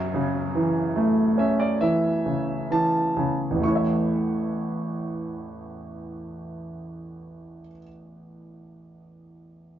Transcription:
0.00 3.12 F#2 soft
0.00 downlifter medium
0.14 1.77 C#3 soft
0.55 1.79 E3 soft
0.96 2.66 A3 soft
1.38 3.11 C#4 soft
1.38 1.61 E5 medium
1.59 1.82 D5 medium
1.81 2.69 E3 soft
1.81 2.72 E5 medium
2.26 3.15 C#3 soft
2.71 3.60 E3 soft
2.71 3.36 A5 medium
3.17 3.62 C#3 soft
3.50 7.61 A1 soft
3.55 7.66 E2 soft
3.60 7.71 A3 soft
3.60 7.74 C#6 soft
3.65 7.76 E4 soft
3.70 7.81 C#5 soft
3.75 7.86 E5 soft

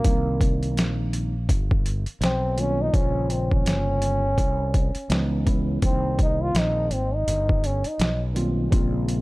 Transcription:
0.00 1.32 D#3 medium
0.00 0.99 A#3 loud
0.04 0.76 C2 medium
0.04 1.32 G3 medium
0.04 1.33 A#3 medium
0.04 1.33 C4 medium
0.04 1.33 D#4 loud
0.04 kick loud
0.04 closed hi-hat loud
0.41 kick medium
0.41 closed hi-hat medium
0.63 closed hi-hat medium
0.76 1.50 A#1 medium
0.76 snare loud
0.76 closed hi-hat medium
1.13 closed hi-hat medium
1.49 2.04 G1 loud
1.49 kick medium
1.49 closed hi-hat medium
1.71 kick medium
1.86 closed hi-hat medium
2.06 muted fretless electric bass stroke soft
2.06 closed hi-hat medium
2.21 2.90 B1 medium
2.21 2.62 C4 loud
2.21 snare medium
2.21 closed hi-hat medium
2.56 2.89 D#3 medium
2.56 2.89 G3 medium
2.56 2.90 A#3 medium
2.56 2.90 C4 medium
2.56 2.83 C#4 loud
2.56 2.90 F4 medium
2.56 closed hi-hat medium
2.81 2.97 D#4 loud
2.93 3.62 A#1 medium
2.93 4.21 C#3 medium
2.93 4.21 G3 medium
2.93 4.22 A#3 medium
2.93 3.33 C#4 loud
2.93 4.22 F4 medium
2.93 4.22 C5 medium
2.93 kick loud
2.93 closed hi-hat medium
3.30 3.54 C4 medium
3.30 closed hi-hat medium
3.51 5.33 C#4 loud
3.51 kick medium
3.65 4.34 G1 medium
3.65 snare medium
3.65 closed hi-hat loud
4.02 closed hi-hat medium
4.37 4.93 C2 loud
4.37 kick medium
4.37 closed hi-hat medium
4.74 kick medium
4.74 closed hi-hat medium
4.95 muted fretless electric bass stroke medium
4.95 closed hi-hat medium
5.09 5.79 C#2 loud
5.09 5.42 E3 loud
5.09 5.42 G#3 medium
5.09 5.42 B3 medium
5.09 5.43 C#4 medium
5.09 5.43 D#4 loud
5.09 snare medium
5.09 closed hi-hat medium
5.45 5.78 E3 medium
5.45 5.78 G#3 medium
5.45 5.79 B3 medium
5.45 5.79 C#4 medium
5.45 5.79 E4 loud
5.45 kick medium
5.45 closed hi-hat medium
5.81 6.51 C2 loud
5.81 7.10 D#3 medium
5.81 7.10 G3 medium
5.81 7.11 A#3 medium
5.81 7.11 C4 medium
5.81 5.91 D4 medium
5.81 kick loud
5.81 closed hi-hat loud
5.85 6.18 C4 loud
5.90 7.14 D#4 medium
6.19 6.44 D#4 loud
6.19 kick loud
6.19 closed hi-hat medium
6.43 6.59 F4 loud
6.55 6.89 A#1 loud
6.55 6.95 D#4 loud
6.55 snare loud
6.55 closed hi-hat medium
6.91 7.25 G#1 medium
6.91 7.16 C4 medium
6.91 closed hi-hat medium
7.15 7.67 D#4 loud
7.27 7.82 G1 loud
7.27 closed hi-hat loud
7.49 kick medium
7.64 7.89 C#4 medium
7.64 closed hi-hat medium
7.84 8.22 D#4 medium
7.84 muted fretless electric bass stroke medium
7.84 closed hi-hat medium
7.99 8.68 B1 loud
7.99 snare medium
7.99 closed hi-hat medium
8.34 8.67 D#3 loud
8.34 8.68 G3 medium
8.34 8.68 A#3 medium
8.34 8.68 C4 medium
8.34 8.68 F4 loud
8.34 closed hi-hat medium
8.70 9.21 A#1 loud
8.70 9.21 C#3 loud
8.70 9.21 G3 medium
8.70 9.21 A#3 medium
8.70 9.21 C4 medium
8.70 9.21 F4 loud
8.70 kick loud
8.70 closed hi-hat loud
9.08 closed hi-hat medium

